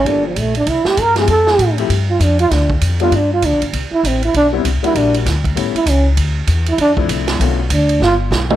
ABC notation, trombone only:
X:1
M:4/4
L:1/8
Q:"Swing" 1/4=196
K:C
V:1 name="Trombone"
D F, A, D E G _B ^G | A3 z2 F D F | D z2 F D F D z | z E C E D z2 E |
D z4 E ^C z | z3 E D z3 | z2 D2 F z3 |]